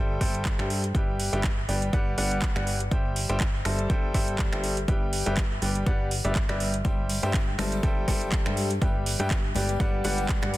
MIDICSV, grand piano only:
0, 0, Header, 1, 2, 480
1, 0, Start_track
1, 0, Key_signature, 1, "major"
1, 0, Tempo, 491803
1, 925, Time_signature, 4, 2, 24, 8
1, 10318, End_track
2, 0, Start_track
2, 0, Title_t, "Grand piano"
2, 0, Program_c, 0, 0
2, 0, Note_on_c, 0, 55, 86
2, 0, Note_on_c, 0, 69, 81
2, 0, Note_on_c, 0, 72, 85
2, 0, Note_on_c, 0, 76, 82
2, 0, Note_on_c, 0, 79, 103
2, 179, Note_off_c, 0, 55, 0
2, 179, Note_off_c, 0, 69, 0
2, 179, Note_off_c, 0, 72, 0
2, 179, Note_off_c, 0, 76, 0
2, 179, Note_off_c, 0, 79, 0
2, 204, Note_on_c, 0, 55, 93
2, 204, Note_on_c, 0, 69, 89
2, 204, Note_on_c, 0, 72, 85
2, 204, Note_on_c, 0, 76, 87
2, 204, Note_on_c, 0, 79, 108
2, 544, Note_off_c, 0, 55, 0
2, 544, Note_off_c, 0, 69, 0
2, 544, Note_off_c, 0, 72, 0
2, 544, Note_off_c, 0, 76, 0
2, 544, Note_off_c, 0, 79, 0
2, 576, Note_on_c, 0, 55, 71
2, 577, Note_on_c, 0, 69, 68
2, 577, Note_on_c, 0, 72, 70
2, 577, Note_on_c, 0, 76, 67
2, 577, Note_on_c, 0, 79, 83
2, 785, Note_off_c, 0, 55, 0
2, 785, Note_off_c, 0, 69, 0
2, 785, Note_off_c, 0, 72, 0
2, 785, Note_off_c, 0, 76, 0
2, 785, Note_off_c, 0, 79, 0
2, 926, Note_on_c, 0, 55, 76
2, 926, Note_on_c, 0, 67, 67
2, 926, Note_on_c, 0, 71, 70
2, 926, Note_on_c, 0, 76, 67
2, 926, Note_on_c, 0, 79, 83
2, 1265, Note_off_c, 0, 55, 0
2, 1265, Note_off_c, 0, 67, 0
2, 1265, Note_off_c, 0, 71, 0
2, 1265, Note_off_c, 0, 76, 0
2, 1265, Note_off_c, 0, 79, 0
2, 1296, Note_on_c, 0, 55, 97
2, 1296, Note_on_c, 0, 67, 85
2, 1297, Note_on_c, 0, 71, 84
2, 1297, Note_on_c, 0, 76, 86
2, 1297, Note_on_c, 0, 79, 105
2, 1418, Note_off_c, 0, 55, 0
2, 1418, Note_off_c, 0, 67, 0
2, 1419, Note_off_c, 0, 71, 0
2, 1419, Note_off_c, 0, 76, 0
2, 1419, Note_off_c, 0, 79, 0
2, 1645, Note_on_c, 0, 55, 69
2, 1645, Note_on_c, 0, 67, 65
2, 1645, Note_on_c, 0, 71, 64
2, 1645, Note_on_c, 0, 74, 64
2, 1645, Note_on_c, 0, 79, 77
2, 1859, Note_off_c, 0, 55, 0
2, 1859, Note_off_c, 0, 67, 0
2, 1859, Note_off_c, 0, 71, 0
2, 1859, Note_off_c, 0, 74, 0
2, 1859, Note_off_c, 0, 79, 0
2, 1885, Note_on_c, 0, 55, 89
2, 1885, Note_on_c, 0, 67, 86
2, 1886, Note_on_c, 0, 71, 85
2, 1886, Note_on_c, 0, 74, 86
2, 1886, Note_on_c, 0, 78, 100
2, 2099, Note_off_c, 0, 55, 0
2, 2099, Note_off_c, 0, 67, 0
2, 2099, Note_off_c, 0, 71, 0
2, 2099, Note_off_c, 0, 74, 0
2, 2099, Note_off_c, 0, 78, 0
2, 2126, Note_on_c, 0, 55, 92
2, 2126, Note_on_c, 0, 67, 88
2, 2126, Note_on_c, 0, 71, 88
2, 2126, Note_on_c, 0, 74, 88
2, 2126, Note_on_c, 0, 78, 107
2, 2465, Note_off_c, 0, 55, 0
2, 2465, Note_off_c, 0, 67, 0
2, 2465, Note_off_c, 0, 71, 0
2, 2465, Note_off_c, 0, 74, 0
2, 2466, Note_off_c, 0, 78, 0
2, 2497, Note_on_c, 0, 55, 74
2, 2497, Note_on_c, 0, 67, 69
2, 2497, Note_on_c, 0, 71, 66
2, 2497, Note_on_c, 0, 74, 68
2, 2497, Note_on_c, 0, 78, 84
2, 2705, Note_off_c, 0, 78, 0
2, 2706, Note_off_c, 0, 55, 0
2, 2706, Note_off_c, 0, 67, 0
2, 2706, Note_off_c, 0, 71, 0
2, 2706, Note_off_c, 0, 74, 0
2, 2845, Note_on_c, 0, 55, 75
2, 2846, Note_on_c, 0, 67, 69
2, 2846, Note_on_c, 0, 72, 71
2, 2846, Note_on_c, 0, 76, 69
2, 2846, Note_on_c, 0, 79, 85
2, 3185, Note_off_c, 0, 55, 0
2, 3185, Note_off_c, 0, 67, 0
2, 3185, Note_off_c, 0, 72, 0
2, 3185, Note_off_c, 0, 76, 0
2, 3185, Note_off_c, 0, 79, 0
2, 3215, Note_on_c, 0, 55, 90
2, 3215, Note_on_c, 0, 76, 85
2, 3216, Note_on_c, 0, 67, 87
2, 3216, Note_on_c, 0, 72, 88
2, 3216, Note_on_c, 0, 79, 104
2, 3338, Note_off_c, 0, 55, 0
2, 3338, Note_off_c, 0, 67, 0
2, 3338, Note_off_c, 0, 72, 0
2, 3338, Note_off_c, 0, 76, 0
2, 3338, Note_off_c, 0, 79, 0
2, 3564, Note_on_c, 0, 55, 72
2, 3565, Note_on_c, 0, 69, 63
2, 3565, Note_on_c, 0, 72, 65
2, 3565, Note_on_c, 0, 76, 65
2, 3565, Note_on_c, 0, 81, 78
2, 3779, Note_off_c, 0, 55, 0
2, 3779, Note_off_c, 0, 69, 0
2, 3779, Note_off_c, 0, 72, 0
2, 3779, Note_off_c, 0, 76, 0
2, 3779, Note_off_c, 0, 81, 0
2, 3805, Note_on_c, 0, 55, 95
2, 3805, Note_on_c, 0, 69, 80
2, 3805, Note_on_c, 0, 72, 81
2, 3805, Note_on_c, 0, 76, 85
2, 3806, Note_on_c, 0, 79, 102
2, 4019, Note_off_c, 0, 55, 0
2, 4019, Note_off_c, 0, 69, 0
2, 4019, Note_off_c, 0, 72, 0
2, 4019, Note_off_c, 0, 76, 0
2, 4019, Note_off_c, 0, 79, 0
2, 4044, Note_on_c, 0, 69, 89
2, 4044, Note_on_c, 0, 76, 89
2, 4044, Note_on_c, 0, 79, 112
2, 4045, Note_on_c, 0, 55, 94
2, 4045, Note_on_c, 0, 72, 89
2, 4384, Note_off_c, 0, 69, 0
2, 4384, Note_off_c, 0, 76, 0
2, 4384, Note_off_c, 0, 79, 0
2, 4385, Note_off_c, 0, 55, 0
2, 4385, Note_off_c, 0, 72, 0
2, 4416, Note_on_c, 0, 76, 68
2, 4417, Note_on_c, 0, 55, 78
2, 4417, Note_on_c, 0, 69, 72
2, 4417, Note_on_c, 0, 72, 69
2, 4417, Note_on_c, 0, 79, 86
2, 4625, Note_off_c, 0, 72, 0
2, 4625, Note_off_c, 0, 76, 0
2, 4625, Note_off_c, 0, 79, 0
2, 4626, Note_off_c, 0, 55, 0
2, 4626, Note_off_c, 0, 69, 0
2, 4765, Note_on_c, 0, 67, 70
2, 4765, Note_on_c, 0, 71, 70
2, 4765, Note_on_c, 0, 76, 68
2, 4766, Note_on_c, 0, 55, 76
2, 4766, Note_on_c, 0, 79, 84
2, 5105, Note_off_c, 0, 55, 0
2, 5105, Note_off_c, 0, 67, 0
2, 5105, Note_off_c, 0, 71, 0
2, 5105, Note_off_c, 0, 76, 0
2, 5105, Note_off_c, 0, 79, 0
2, 5136, Note_on_c, 0, 55, 92
2, 5136, Note_on_c, 0, 67, 85
2, 5136, Note_on_c, 0, 71, 86
2, 5136, Note_on_c, 0, 76, 86
2, 5136, Note_on_c, 0, 79, 107
2, 5258, Note_off_c, 0, 55, 0
2, 5258, Note_off_c, 0, 67, 0
2, 5258, Note_off_c, 0, 71, 0
2, 5258, Note_off_c, 0, 76, 0
2, 5258, Note_off_c, 0, 79, 0
2, 5484, Note_on_c, 0, 55, 71
2, 5484, Note_on_c, 0, 67, 62
2, 5484, Note_on_c, 0, 71, 62
2, 5484, Note_on_c, 0, 79, 76
2, 5485, Note_on_c, 0, 74, 66
2, 5698, Note_off_c, 0, 55, 0
2, 5698, Note_off_c, 0, 79, 0
2, 5699, Note_off_c, 0, 67, 0
2, 5699, Note_off_c, 0, 71, 0
2, 5699, Note_off_c, 0, 74, 0
2, 5724, Note_on_c, 0, 71, 86
2, 5724, Note_on_c, 0, 74, 85
2, 5725, Note_on_c, 0, 55, 90
2, 5725, Note_on_c, 0, 67, 84
2, 5725, Note_on_c, 0, 78, 104
2, 5939, Note_off_c, 0, 55, 0
2, 5939, Note_off_c, 0, 67, 0
2, 5939, Note_off_c, 0, 71, 0
2, 5939, Note_off_c, 0, 74, 0
2, 5939, Note_off_c, 0, 78, 0
2, 6096, Note_on_c, 0, 55, 86
2, 6096, Note_on_c, 0, 67, 80
2, 6096, Note_on_c, 0, 71, 75
2, 6096, Note_on_c, 0, 76, 92
2, 6097, Note_on_c, 0, 74, 79
2, 6218, Note_off_c, 0, 55, 0
2, 6218, Note_off_c, 0, 67, 0
2, 6218, Note_off_c, 0, 71, 0
2, 6218, Note_off_c, 0, 74, 0
2, 6218, Note_off_c, 0, 76, 0
2, 6336, Note_on_c, 0, 55, 91
2, 6337, Note_on_c, 0, 67, 80
2, 6337, Note_on_c, 0, 71, 82
2, 6337, Note_on_c, 0, 74, 82
2, 6337, Note_on_c, 0, 76, 98
2, 6545, Note_off_c, 0, 55, 0
2, 6545, Note_off_c, 0, 74, 0
2, 6546, Note_off_c, 0, 67, 0
2, 6546, Note_off_c, 0, 71, 0
2, 6546, Note_off_c, 0, 76, 0
2, 6685, Note_on_c, 0, 55, 77
2, 6685, Note_on_c, 0, 67, 67
2, 6685, Note_on_c, 0, 76, 70
2, 6685, Note_on_c, 0, 79, 83
2, 6686, Note_on_c, 0, 72, 66
2, 7025, Note_off_c, 0, 55, 0
2, 7025, Note_off_c, 0, 67, 0
2, 7025, Note_off_c, 0, 72, 0
2, 7025, Note_off_c, 0, 76, 0
2, 7025, Note_off_c, 0, 79, 0
2, 7058, Note_on_c, 0, 55, 97
2, 7058, Note_on_c, 0, 67, 83
2, 7058, Note_on_c, 0, 72, 86
2, 7058, Note_on_c, 0, 76, 83
2, 7058, Note_on_c, 0, 79, 98
2, 7179, Note_off_c, 0, 55, 0
2, 7179, Note_off_c, 0, 67, 0
2, 7179, Note_off_c, 0, 72, 0
2, 7179, Note_off_c, 0, 76, 0
2, 7179, Note_off_c, 0, 79, 0
2, 7406, Note_on_c, 0, 55, 74
2, 7406, Note_on_c, 0, 69, 62
2, 7406, Note_on_c, 0, 72, 64
2, 7406, Note_on_c, 0, 76, 65
2, 7406, Note_on_c, 0, 81, 74
2, 7619, Note_off_c, 0, 81, 0
2, 7620, Note_off_c, 0, 55, 0
2, 7620, Note_off_c, 0, 69, 0
2, 7620, Note_off_c, 0, 72, 0
2, 7620, Note_off_c, 0, 76, 0
2, 7644, Note_on_c, 0, 55, 94
2, 7644, Note_on_c, 0, 69, 86
2, 7645, Note_on_c, 0, 72, 82
2, 7645, Note_on_c, 0, 76, 86
2, 7645, Note_on_c, 0, 79, 101
2, 7859, Note_off_c, 0, 55, 0
2, 7859, Note_off_c, 0, 69, 0
2, 7859, Note_off_c, 0, 72, 0
2, 7859, Note_off_c, 0, 76, 0
2, 7859, Note_off_c, 0, 79, 0
2, 7884, Note_on_c, 0, 55, 98
2, 7884, Note_on_c, 0, 72, 91
2, 7884, Note_on_c, 0, 76, 89
2, 7884, Note_on_c, 0, 79, 101
2, 7885, Note_on_c, 0, 69, 88
2, 8224, Note_off_c, 0, 72, 0
2, 8224, Note_off_c, 0, 76, 0
2, 8224, Note_off_c, 0, 79, 0
2, 8225, Note_off_c, 0, 55, 0
2, 8225, Note_off_c, 0, 69, 0
2, 8256, Note_on_c, 0, 69, 70
2, 8256, Note_on_c, 0, 79, 86
2, 8257, Note_on_c, 0, 55, 75
2, 8257, Note_on_c, 0, 72, 69
2, 8257, Note_on_c, 0, 76, 69
2, 8465, Note_off_c, 0, 55, 0
2, 8465, Note_off_c, 0, 69, 0
2, 8465, Note_off_c, 0, 79, 0
2, 8466, Note_off_c, 0, 72, 0
2, 8466, Note_off_c, 0, 76, 0
2, 8605, Note_on_c, 0, 55, 78
2, 8605, Note_on_c, 0, 67, 67
2, 8605, Note_on_c, 0, 71, 72
2, 8605, Note_on_c, 0, 76, 70
2, 8605, Note_on_c, 0, 79, 81
2, 8945, Note_off_c, 0, 55, 0
2, 8945, Note_off_c, 0, 67, 0
2, 8945, Note_off_c, 0, 71, 0
2, 8945, Note_off_c, 0, 76, 0
2, 8945, Note_off_c, 0, 79, 0
2, 8977, Note_on_c, 0, 55, 93
2, 8977, Note_on_c, 0, 67, 87
2, 8977, Note_on_c, 0, 71, 86
2, 8977, Note_on_c, 0, 76, 86
2, 8977, Note_on_c, 0, 79, 107
2, 9099, Note_off_c, 0, 55, 0
2, 9099, Note_off_c, 0, 67, 0
2, 9099, Note_off_c, 0, 71, 0
2, 9099, Note_off_c, 0, 76, 0
2, 9099, Note_off_c, 0, 79, 0
2, 9325, Note_on_c, 0, 55, 70
2, 9325, Note_on_c, 0, 67, 69
2, 9325, Note_on_c, 0, 71, 62
2, 9325, Note_on_c, 0, 74, 67
2, 9325, Note_on_c, 0, 79, 76
2, 9539, Note_off_c, 0, 55, 0
2, 9539, Note_off_c, 0, 67, 0
2, 9539, Note_off_c, 0, 71, 0
2, 9539, Note_off_c, 0, 74, 0
2, 9539, Note_off_c, 0, 79, 0
2, 9564, Note_on_c, 0, 67, 86
2, 9565, Note_on_c, 0, 55, 92
2, 9565, Note_on_c, 0, 71, 84
2, 9565, Note_on_c, 0, 74, 84
2, 9565, Note_on_c, 0, 78, 101
2, 9779, Note_off_c, 0, 55, 0
2, 9779, Note_off_c, 0, 67, 0
2, 9779, Note_off_c, 0, 71, 0
2, 9779, Note_off_c, 0, 74, 0
2, 9779, Note_off_c, 0, 78, 0
2, 9804, Note_on_c, 0, 55, 97
2, 9804, Note_on_c, 0, 67, 90
2, 9805, Note_on_c, 0, 71, 92
2, 9805, Note_on_c, 0, 74, 91
2, 9805, Note_on_c, 0, 78, 111
2, 10144, Note_off_c, 0, 55, 0
2, 10145, Note_off_c, 0, 67, 0
2, 10145, Note_off_c, 0, 71, 0
2, 10145, Note_off_c, 0, 74, 0
2, 10145, Note_off_c, 0, 78, 0
2, 10177, Note_on_c, 0, 55, 77
2, 10177, Note_on_c, 0, 74, 70
2, 10177, Note_on_c, 0, 78, 85
2, 10178, Note_on_c, 0, 67, 70
2, 10178, Note_on_c, 0, 71, 69
2, 10318, Note_off_c, 0, 55, 0
2, 10318, Note_off_c, 0, 67, 0
2, 10318, Note_off_c, 0, 71, 0
2, 10318, Note_off_c, 0, 74, 0
2, 10318, Note_off_c, 0, 78, 0
2, 10318, End_track
0, 0, End_of_file